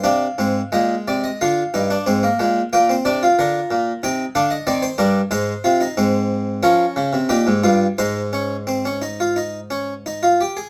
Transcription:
<<
  \new Staff \with { instrumentName = "Harpsichord" } { \time 4/4 \key aes \major \tempo 4 = 90 << { f''4 ees''8 d''16 ees''16 f''2 | g''8 d''8 bes'4 g''8 f''16 ees''16 d''16 c''16 bes'8 | c''2 bes'4 g'4 | c''2.~ c''8 r8 | } \\ { d'8 c'8 aes4 f'8 ees'16 d'16 c'16 bes16 aes8 | bes16 c'16 d'16 f'4~ f'16 ees'8 d'8 c'8 d'8 | ees'8 f'16 ees'16 c'4 des'4 ees'8 f'8 | ees'8 des'8 c'16 des'16 ees'16 f'16 ees'8 des'8 ees'16 f'16 g'16 aes'16 | } >> }
  \new Staff \with { instrumentName = "Harpsichord" } { \clef bass \time 4/4 \key aes \major c8 aes,8 bes,8 c8 d8 g,8 aes,8 bes,8 | bes,8 c8 d8 bes,8 c8 d8 ees8 g,8 | aes,8 c8 aes,4 f8 des16 c16 bes,16 aes,16 g,8 | aes,2.~ aes,8 r8 | }
>>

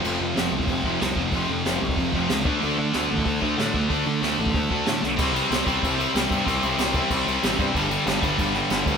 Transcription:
<<
  \new Staff \with { instrumentName = "Distorted electric guitar" } { \clef bass \time 4/4 \key d \dorian \tempo 4 = 186 <f, c f>2. <f, c f>8 <f, c f>8~ | <f, c f>2. <f, c f>8 <d a d'>8~ | <d a d'>2. <d a d'>8 <d a d'>8~ | <d a d'>2. <d a d'>8 r8 |
<c g c'>4. <c g c'>2~ <c g c'>8 | <c g c'>4. <c g c'>2~ <c g c'>8 | <g, d g>4. <g, d g>2~ <g, d g>8 | }
  \new Staff \with { instrumentName = "Distorted electric guitar" } { \clef bass \time 4/4 \key d \dorian <f, c f>8 <f, c>8 <f, c f>8 <f, c>8 <f, c>8 <f, c f>8 <f, c>8 <f, c>8 | <f, c f>8 <f, c>8 <f, c f>8 <f, c>8 <f, c>8 <f, c f>8 <f, c>8 <d a d'>8 | <d a d'>8 <d a>8 <d a d'>8 <d a>8 <d a>8 <d a d'>8 <d a>8 <d a>8 | <d a d'>8 <d a>8 <d a d'>8 <d a>8 <d a>8 <d a d'>8 <d a>8 <d a>8 |
<c g c'>8 <c g c'>8 <c g c'>8 <c g c'>8 <c g c'>8 <c g c'>8 <c g c'>8 <c g c'>8 | <c g c'>8 <c g c'>8 <c g c'>8 <c g c'>8 <c g c'>8 <c g c'>8 <c g c'>8 <c g c'>8 | <g, d g>8 <g, d g>8 <g, d g>8 <g, d g>8 <g, d g>8 <g, d g>8 <g, d g>8 <g, d g>8 | }
  \new Staff \with { instrumentName = "Distorted electric guitar" } { \clef bass \time 4/4 \key d \dorian <f, c f>8 <f, c>8 <f, c f>8 <f, c>8 <f, c>8 <f, c f>8 <f, c>8 <f, c>8 | <f, c f>8 <f, c>8 <f, c f>8 <f, c>8 <f, c>8 <f, c f>8 <f, c>8 <d a d'>8 | <d a d'>8 <d a>8 <d a d'>8 <d a>8 <d a>8 <d a d'>8 <d a>8 <d a>8 | <d a d'>8 <d a>8 <d a d'>8 <d a>8 <d a>8 <d a d'>8 <d a>8 <d a>8 |
<c g c'>8 <c g c'>8 <c g c'>8 <c g c'>8 <c g c'>8 <c g c'>8 <c g c'>8 <c g c'>8 | <c g c'>8 <c g c'>8 <c g c'>8 <c g c'>8 <c g c'>8 <c g c'>8 <c g c'>8 <c g c'>8 | <g, d g>8 <g, d g>8 <g, d g>8 <g, d g>8 <g, d g>8 <g, d g>8 <g, d g>8 <g, d g>8 | }
  \new Staff \with { instrumentName = "Picked electric bass" } { \clef bass \time 4/4 \key d \dorian f,,8 f,8 f,,8 c,8 f,,8 f,,8 c,8 f,,8 | f,,8 f,8 f,,8 c,8 f,,8 f,,8 des,8 d,8 | d,8 d8 d,8 a,,8 d,8 d,8 a,8 d,8 | d,8 d8 d,8 a,,8 d,8 d,8 a,8 b,,8 |
c,4 c,8 c,8 c,4 c,8 g,8 | c,8 c,8 c,4 c,8 c,8 a,,8 g,8 | g,,4 g,,8 g,,8 g,,4 g,,8 d,8 | }
  \new DrumStaff \with { instrumentName = "Drums" } \drummode { \time 4/4 cymc4 <hho sn>8. bd16 <hho bd>8 bd8 <hho sn>8 bd8 | <hho bd>4 <hho sn>8. bd16 <hho bd>8 bd8 <hho sn>8 bd8 | hho4 <hho sn>8. bd16 <hho bd>8 bd8 <hho sn>8 bd8 | <hho bd>4 <hho sn>8. bd16 <hho bd>8 bd8 <hho sn>8 sn8 |
<cymc bd>8 cymc8 <cymc sn>8 <cymc bd>8 <cymc bd>8 cymc8 <cymc sn>8 <cymc bd>8 | <cymc bd>8 cymc8 <cymc sn>8 <cymc bd>8 <cymc bd>8 cymc8 <cymc sn>8 <cymc bd>8 | <cymc bd>8 cymc8 <cymc sn>8 <cymc bd>8 <cymc bd>8 cymc8 <cymc sn>8 <cymc bd>8 | }
>>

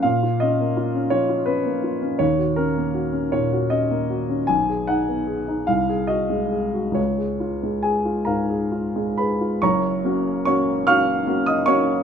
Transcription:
\new Staff \with { instrumentName = "Grand piano" } { \time 6/8 \key fis \major \tempo 4. = 50 << { eis''8 dis''4 cis''8 b'4 | cis''8 ais'4 cis''8 dis''4 | gis''8 fis''4 eis''8 dis''4 | cis''4 <gis' gis''>8 <ais' eis'' ais''>4 <b' b''>8 |
<cis'' ais'' cis'''>4 <cis'' cis'''>8 <eis'' cis''' eis'''>8. <dis'' dis'''>16 <cis'' cis'''>8 | } \\ { ais,16 eis'16 cis'16 ais16 eis'16 cis'16 eis16 eis'16 cis'16 ais16 eis'16 cis'16 | dis,16 fis'16 cis'16 ais16 fis'16 cis'16 ais,16 fis'16 cis'16 ais16 fis'16 cis'16 | b,,16 gis'16 dis'16 b16 gis'16 dis'16 bis,,16 gis'16 fis'16 gis16 gis'16 fis'16 | cis,16 gis'16 eis'16 gis8 eis'16 gis,16 gis'16 eis'16 gis16 gis'16 eis'16 |
<fis,, fis,>8 <ais cis' fis'>8 <ais cis' fis'>8 <ais cis' fis'>8 <ais cis' fis'>8 <ais cis' fis'>8 | } >> }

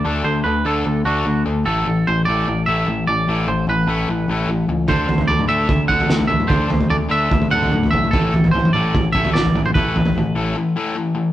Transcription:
<<
  \new Staff \with { instrumentName = "Clean electric guitar" } { \time 4/4 \key d \mixolydian \tempo 4 = 148 d''8 c''8 b'8 a'4 fis'4 r8 | a'4 c''8 d''4 e''4 d''8~ | d''8 c''8 b'2~ b'8 r8 | c''4 d''8 e''4 fis''4 e''8 |
c''4 d''8 e''4 fis''4 e''8 | a'4 c''8 d''4 e''8 d''8. c''16 | b'2. r4 | }
  \new Staff \with { instrumentName = "Overdriven electric guitar" } { \clef bass \time 4/4 \key d \mixolydian <d a d'>8 <d a>8 <d a>8 <d a d'>8 <d a>8 <d a d'>8 <d a>8 <d a>8 | <a, e a>8 <a, e>8 <a, e>8 <a, e a>8 <a, e>8 <a, e a>8 <a, e>8 <a, e>8 | <a, e a>8 <a, e>8 <a, e>8 <a, e a>8 <a, e>8 <a, e a>8 <a, e>8 <a, e>8 | <d a d'>8 <d a>8 <d a>8 <d a d'>8 <d a>8 <d a d'>8 <d a>8 <d a>8 |
<d a d'>8 <d a>8 <d a>8 <d a d'>8 <d a>8 <d a d'>8 <d a>8 <d a>8 | <a, e a>8 <a, e>8 <a, e>8 <a, e a>8 <a, e>8 <a, e a>8 <a, e>8 <a, e>8 | <a, e a>8 <a, e>8 <a, e>8 <a, e a>8 <a, e>8 <a, e a>8 <a, e>8 <a, e>8 | }
  \new Staff \with { instrumentName = "Picked electric bass" } { \clef bass \time 4/4 \key d \mixolydian d,8 d,8 d,8 d,8 d,8 d,8 d,8 d,8 | a,,8 a,,8 a,,8 a,,8 a,,8 a,,8 a,,8 a,,8 | a,,8 a,,8 a,,8 a,,8 a,,8 a,,8 a,,8 cis,8 | d,8 d,8 d,8 d,8 d,8 d,8 d,8 d,8 |
d,8 d,8 d,8 d,8 d,8 d,8 d,8 b,,8 | a,,8 a,,8 a,,8 a,,8 a,,8 a,,8 a,,8 a,,8 | a,,8 a,,8 a,,8 a,,8 r2 | }
  \new DrumStaff \with { instrumentName = "Drums" } \drummode { \time 4/4 r4 r4 r4 r4 | r4 r4 r4 r4 | r4 r4 r4 r4 | <bd tomfh>8 tomfh16 tomfh16 tomfh16 toml8. <bd tomfh>8 bd16 tomfh16 sn16 tomfh16 tomfh16 toml16 |
<bd tomfh>8 tomfh16 tomfh16 tomfh4 <bd tomfh>16 tomfh16 toml16 tomfh16 toml16 tomfh16 <bd tomfh>16 toml16 | <bd tomfh>8 tomfh16 tomfh16 tomfh16 toml8. <bd tomfh>8 bd16 tomfh16 sn16 tomfh16 tomfh16 toml16 | <bd tomfh>8 tomfh16 tomfh16 tomfh4 r4 r4 | }
>>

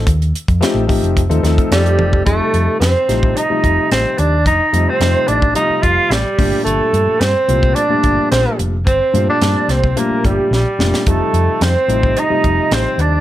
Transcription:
<<
  \new Staff \with { instrumentName = "Flute" } { \time 4/4 \key f \mixolydian \tempo 4 = 109 r2. g'4 | a'4 c''4 ees''4 c''8 d''8 | ees''8. c''8. d''8 ees''8 f''8 g'4 | a'4 c''4 d''4 c''8 r8 |
c''8. d''8. c''8 bes'8 g'8 g'4 | a'4 c''4 ees''4 c''8 d''8 | }
  \new Staff \with { instrumentName = "Tenor saxophone" } { \time 4/4 \key f \mixolydian r2. g4 | a4 c'4 ees'4 c'8 d'8 | ees'8. c'8. d'8 ees'8 f'8 g4 | a4 c'4 d'4 c'8 r8 |
c'8. d'8. c'8 bes8 g8 g4 | a4 c'4 ees'4 c'8 d'8 | }
  \new Staff \with { instrumentName = "Grand piano" } { \clef bass \time 4/4 \key f \mixolydian r4 <f a c' ees' g'>8 <f a c' ees' g'>8 r16 <f a c' ees' a'>16 <f a c' ees' a'>4. | <c f g a ees'>4~ <c f g a ees'>16 r16 <c f g a ees'>8 r16 <c f g a ees'>4. r16 | r8 <c f g a c'>8 <c f g a ees'>8. r16 <c f g a f'>4~ <c f g a f'>16 r16 <bes, f g a d'>8~ | <bes, f g a d'>4 r8 <bes, f g a c'>8 r16 <bes, f g a d'>4. r16 |
r8 <bes, f g a d'>8 <bes, f g a c'>8. r16 <bes, f g a d'>4~ <bes, f g a d'>16 r16 <bes, f g a d'>8 | <c f g a ees'>4~ <c f g a ees'>16 r16 <c f g a ees'>8 r16 <c f g a ees'>4. r16 | }
  \new Staff \with { instrumentName = "Fingered electric bass" } { \clef bass \time 4/4 \key f \mixolydian ees,8 r16 f,16 r16 a,,8 f,,8 ees,16 ees,16 r16 f,8 f,,8 | f,,16 r16 f,16 r16 f,16 r16 a,,8 r8 f,,16 r16 a,,16 r16 ees,8 | f,,16 r16 f,16 r16 f,16 r16 a,,8 r8 f,,16 r16 a,,16 r16 g,,16 r16 | g,,16 r16 g,16 r16 g,16 r16 c,8 r8 g,,16 r16 bes,,16 r16 f,,8 |
g,,16 r16 g,16 r16 g,16 r16 c,8 r8 g,,16 r16 bes,,16 r16 f,,16 r16 | f,,16 r16 f,16 r16 f,16 r16 a,,8 r8 f,,16 r16 a,,16 r16 ees,8 | }
  \new DrumStaff \with { instrumentName = "Drums" } \drummode { \time 4/4 <hh bd>16 hh16 hh16 <hh bd>16 <hh sn>8 <hho bd>16 hh16 <hh bd>16 hh16 <hh sn>16 <hh bd>16 <hh sn>16 hh16 tommh16 bd16 | <hh bd>8 hh8 <hh sn>8 <hh sn>16 bd16 hh8 <hh bd>8 <hh sn>8 hh8 | <hh bd>8 hh8 <hh sn>8 hh16 bd16 hh8 <hh bd>8 <hh sn>8 <hho bd>8 | hh8 hh8 <hh sn>8 hh16 bd16 hh8 <hh bd>8 <hh sn>8 hh8 |
<hh bd>8 hh8 <hh sn>8 <hh sn>16 bd16 hh8 <hh bd>8 sn8 sn16 sn16 | <hh bd>8 hh8 <hh sn>8 hh16 bd16 hh8 <hh bd>8 <hh sn>8 hh8 | }
>>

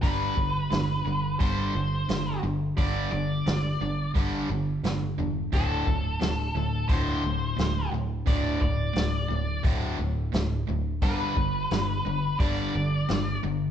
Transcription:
<<
  \new Staff \with { instrumentName = "Lead electric guitar" } { \time 4/4 \key g \major \tempo 4 = 87 b'2 c''4. r8 | d''8 d''4. r2 | a'2 c''4. r8 | d''8 d''4. r2 |
b'2 d''4. r8 | }
  \new Staff \with { instrumentName = "Overdriven electric guitar" } { \clef bass \time 4/4 \key g \major <g, d g>8 <g, d>8 <g, d>8 <g, d>8 <g, d g>8 <g, d>8 <g, d>8 <g, d>8 | <g, d g>8 <g, d>8 <g, d>8 <g, d>8 <g, d g>8 <g, d>8 <g, d>8 <g, d>8 | <d, a, d>8 <d, a,>8 <d, a,>8 <d, a,>8 <d, a, d>8 <d, a,>8 <d, a,>8 <d, a,>8 | <d, a, d>8 <d, a,>8 <d, a,>8 <d, a,>8 <d, a, d>8 <d, a,>8 <d, a,>8 <d, a,>8 |
<g, d g>8 <g, d>8 <g, d>8 <g, d>8 <g, d g>8 <g, d>8 <g, d>8 <g, d>8 | }
  \new Staff \with { instrumentName = "Overdriven electric guitar" } { \clef bass \time 4/4 \key g \major <g, d g>8 <g, d>8 <g, d>8 <g, d>8 <g, d g>8 <g, d>8 <g, d>8 <g, d>8 | <g, d g>8 <g, d>8 <g, d>8 <g, d>8 <g, d g>8 <g, d>8 <g, d>8 <g, d>8 | <d, a, d>8 <d, a,>8 <d, a,>8 <d, a,>8 <d, a, d>8 <d, a,>8 <d, a,>8 <d, a,>8 | <d, a, d>8 <d, a,>8 <d, a,>8 <d, a,>8 <d, a, d>8 <d, a,>8 <d, a,>8 <d, a,>8 |
<g, d g>8 <g, d>8 <g, d>8 <g, d>8 <g, d g>8 <g, d>8 <g, d>8 <g, d>8 | }
  \new Staff \with { instrumentName = "Picked electric bass" } { \clef bass \time 4/4 \key g \major g,,8 g,,8 g,,8 g,,8 g,,8 g,,8 g,,8 g,,8 | g,,8 g,,8 g,,8 g,,8 g,,8 g,,8 g,,8 e,,8 | d,,8 d,,8 d,,8 d,,8 d,,8 d,,8 d,,8 d,,8 | d,,8 d,,8 d,,8 d,,8 d,,8 d,,8 d,,8 d,,8 |
g,,8 g,,8 g,,8 g,,8 g,,8 g,,8 g,,8 g,,8 | }
  \new DrumStaff \with { instrumentName = "Drums" } \drummode { \time 4/4 <hho bd>8 bd8 <hho sn>4 <hho bd>4 <hho sn>4 | <hho bd>4 <hho sn>4 <hho bd>4 <hho sn>4 | <hho bd>8 bd8 <hho sn>4 <hho bd>4 <hho sn>4 | <hho bd>8 bd8 <hho sn>4 <hho bd>4 <hho sn>4 |
<hho bd>8 bd8 <hho sn>4 <hho bd>4 <hho sn>4 | }
>>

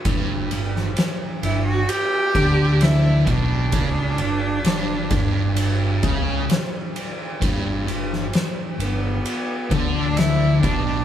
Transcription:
<<
  \new Staff \with { instrumentName = "Cello" } { \time 4/4 \key g \lydian \tempo 4 = 65 r4. e'16 fis'16 g'4 e'8 d'8~ | d'2~ d'8 r4. | r4. b4~ b16 d'16 e'8 d'8 | }
  \new Staff \with { instrumentName = "Distorted electric guitar" } { \clef bass \time 4/4 \key g \lydian g,8 g,8 r8 g,8 r8 d4 b,8 | cis8 g,8 g,8 g,4 cis8 r4 | g,8 g,8 r8 g,8 r8 d4 b,8 | }
  \new Staff \with { instrumentName = "Distorted electric guitar" } { \clef bass \time 4/4 \key g \lydian g,8 g,8 r8 g,8 r8 d4 b,8 | cis8 g,8 g,8 g,4 cis8 r4 | g,8 g,8 r8 g,8 r8 d4 b,8 | }
  \new Staff \with { instrumentName = "Picked electric bass" } { \clef bass \time 4/4 \key g \lydian g,,8 g,,8 r8 g,,8 r8 d,4 b,,8 | cis,8 g,,8 g,,8 g,,4 cis,8 r4 | g,,8 g,,8 r8 g,,8 r8 d,4 b,,8 | }
  \new DrumStaff \with { instrumentName = "Drums" } \drummode { \time 4/4 <bd cymr>8 cymr16 sn16 <cymr sn>8 cymr8 cymr8 <bd cymr>8 <cymr sn>8 <bd cymr>8 | <bd cymr>8 cymr8 <cymr sn>8 <bd cymr>8 cymr8 <bd cymr>8 <cymr sn>8 cymr8 | <bd cymr>8 cymr16 sn16 <cymr sn>8 cymr8 cymr8 <bd cymr>8 <cymr sn>8 <bd cymr>8 | }
>>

